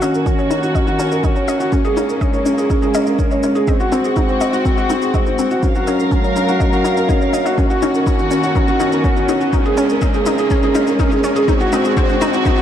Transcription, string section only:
Already playing: D#3 C#4 F#4
1.72 G#3 A#3
3.68 C4 F#4
5.63 F#3 A#4 F5
7.58 D#3 C#4 F#4
9.53 G#3 A#3
11.48 C4 F#4

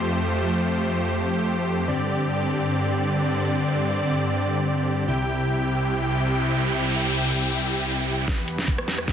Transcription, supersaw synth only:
Already playing: F2 F3 A3 G4 C5
1.88 G2 D3 C4 D5
5.08 C2 C3 E4 G4 G5
8.28 E2 E3 B3 G4 B4

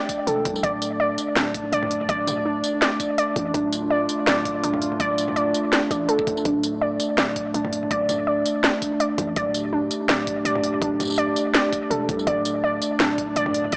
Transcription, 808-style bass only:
0.27 E1
0.45 C2
0.64 D1
1.36 D1
1.72 D1
2.09 D1
3.36 A1
3.54 D1
4.27 D1
4.64 D1
5.00 D1
5.91 A1
6.45 D1
7.18 D1
7.54 D1
7.91 D1
9.18 A1
9.36 D1
10.09 D1
10.45 D1
10.82 D1
11.90 E1
12.09 C2
12.27 D1
13.00 D1
13.36 D1
13.73 D1

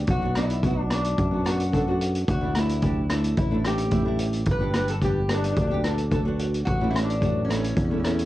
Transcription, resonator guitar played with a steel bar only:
0.10 F#4
0.37 E4
0.81 D4
0.92 D4
1.46 F#4
2.30 F#4
2.59 E4
3.38 E4
3.67 G4
4.51 B4
4.76 B4
4.90 A4
5.04 G4
5.32 D4
5.38 D4
5.46 D4
5.52 D4
5.61 D4
5.67 D4
6.65 F#4
6.91 E4
7.04 D4
7.45 C#4
7.53 C#4
7.60 C#4
7.69 C#4
7.78 C#4
7.84 C#4
7.91 C#4
7.99 C#4
8.06 C#4
8.14 C#4

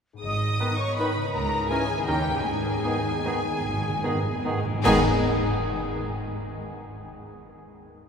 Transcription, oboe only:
0.60 B4
1.00 B4
1.71 A#4
2.07 A#4
2.84 G#4
3.27 G#4
4.05 G#4
4.46 G#4
4.85 G#4

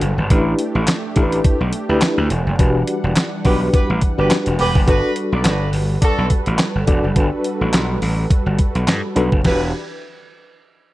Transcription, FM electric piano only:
0.30 D4 E4 G4 B4
1.16 D4 E4 G4 A4
1.23 B4
1.89 D4 E4 G4 B4
2.59 D4 F#4 G4 B4
3.45 D4 F#4 G4 B4
4.18 D4 F#4 G4 B4
4.87 D4 F#4 A4 B4
6.87 D4 F#4 A4 D5
7.16 D4 F#4 A4 B4
9.16 D4 F#4 A4 B4
9.45 D4 F#4 G4 B4

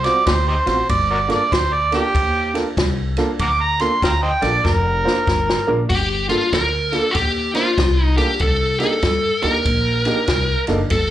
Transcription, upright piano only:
0.05 C4 F4 F#4 C5
0.66 C4 F4 F#4 C5
1.28 A#3 D4 F4 A4
1.92 A#3 D4 F4 A4
2.54 A#3 D4 F4 A4
3.18 A#3 D4 F4 A4
3.81 A#3 D4 F4 A4
4.42 A#3 D4 F4 A4
5.04 A#3 D4 F4 C5
5.67 A#3 D4 F4 A#4
6.29 A#3 D4 F4 A4
6.92 A#3 D4 F4 A4
7.55 A#3 D4 F4 C5
8.17 A#3 D4 F4 A4
8.80 A#3 D4 D#4 G4
9.42 A#3 D4 D#4 G4
10.05 A#3 D4 D#4 G4
10.68 A#3 D4 D#4 A4

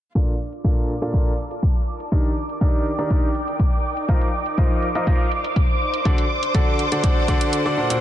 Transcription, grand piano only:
0.15 A#2 D4 F4 A4 A#4 D5
0.64 A#2 D4 F4 A4 A#4 D5
1.02 A#2 D4 F4 A4 A#4 D5
1.14 A#2 D4 F4 A4 A#4 D5
2.12 D#3 D4 D#4 G4 A#4 D5
2.61 D#3 D4 D#4 G4 A#4 D5
2.98 D#3 D4 D#4 G4 A#4 D5
3.10 D#3 D4 D#4 G4 A#4 D5
4.09 F3 D#4 F4 A#4 C5 D#5
4.58 F3 D#4 F4 A#4 C5 D#5
4.95 F3 D#4 F4 A#4 C5 D#5
5.07 F3 D#4 F4 A#4 C5 D#5
6.05 D3 D4 F#4 A4 C5 D5
6.54 D3 D4 F#4 A4 C5 D5
6.92 D3 D4 F#4 A4 C5 D5
7.04 D3 D4 F#4 A4 C5 D5
7.28 D3 D4 F#4 A4 C5 D5
7.66 D3 D4 F#4 A4 C5 D5
7.78 A#2 D4 F#4 A4 C5 F#5
7.90 A#2 D4 F#4 A4 C5 F#5

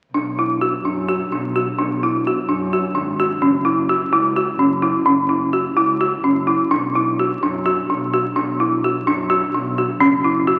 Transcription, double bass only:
0.12 B1
0.83 F#2
1.30 B1
1.77 B1
2.47 F#2
2.95 G#1
3.42 F#1
4.11 C#2
4.58 F#1
5.06 F#1
5.76 C#2
6.23 F#1
6.71 B1
7.43 F#2
7.90 B1
8.37 B1
9.06 F#2
9.53 B1
9.99 F#1

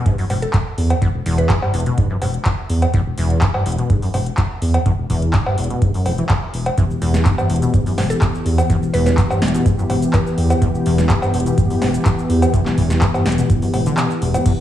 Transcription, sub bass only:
0.30 E1
0.78 E2
1.14 E1
1.26 E1
1.74 E1
2.22 E1
2.70 E2
3.06 E1
3.18 E1
3.66 E1
4.14 E1
4.62 E2
4.98 E1
5.10 E1
5.58 E1
6.06 E1
6.54 E1
6.90 E1
7.02 E1
7.50 E1
7.98 E1
8.46 E2
8.82 E1
8.94 E1
9.42 E1
9.90 E1
10.38 E2
10.74 E1
10.86 E1
11.34 E1
11.82 E1
12.30 E2
12.66 E1
12.78 E1
13.26 E1
13.74 E1
14.22 E1

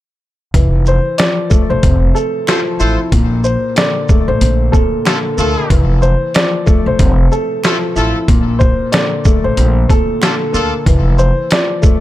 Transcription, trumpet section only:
2.48 F4 A4 C5
2.80 F4 A4 C5
5.06 D4 F4 A4
5.38 A3 F4 A4
7.65 A3 F4 A4
7.96 A3 F4 A4
10.23 D4 F4 A4
10.53 D4 F4 A4

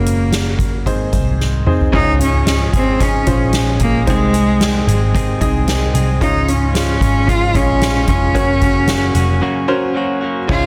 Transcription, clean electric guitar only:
1.93 C#3 F3 G#3 C#4 G#4
2.18 G#3 C#4 G#4
2.45 F3 G#3 C#4 G#4
2.74 G#3 C#4 G#4
3.00 C#3 F3 G#3 C#4 G#4
3.27 G#3 C#4 G#4
3.54 F3 G#3 C#4 G#4
3.81 G#3 C#4 G#4
4.08 C3 D#3 G#3 C4 G#4
4.34 G#3 C4 G#4
4.61 D#3 G#3 C4 G#4
4.87 G#3 C4 G#4
5.14 C3 D#3 G#3 C4 G#4
5.41 G#3 C4 G#4
5.67 D#3 G#3 C4 G#4
5.94 G#3 C4 G#4
6.21 C#3 F3 G#3 C#4 F4
6.47 G#3 C#4 F4
6.74 F3 G#3 C#4 F4
7.01 G#3 C#4 F4
7.27 C#3 F3 G#3 C#4 F4
7.54 G#3 C#4 F4
7.80 F3 G#3 C#4 F4
8.07 G#3 C#4 F4
8.34 F#2 C#3 F#3 A#3 C#4 F#4
8.61 F#3 A#3 C#4 F#4
8.88 F#3 A#3 C#4 F#4
9.14 F#3 A#3 C#4 F#4
9.41 F#2 C#3 F#3 A#3 C#4 F#4
9.69 F#3 A#3 C#4 F#4
9.94 F#3 A#3 C#4 F#4
10.21 F#3 A#3 C#4 F#4
10.48 C#3 F3 G#3 C#4 F4

